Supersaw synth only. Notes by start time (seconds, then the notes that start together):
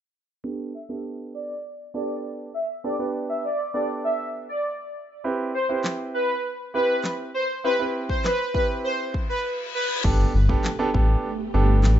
0.74 E5
1.34 D5
1.95 D5
2.54 E5
2.84 D5
3.29 E5
3.44 D5
3.74 D5
4.04 E5
4.49 D5
5.54 C5
6.14 B4
6.74 B4
7.34 C5
7.64 B4
8.09 C5
8.24 B4
8.54 B4
8.84 C5
9.29 B4
9.74 B4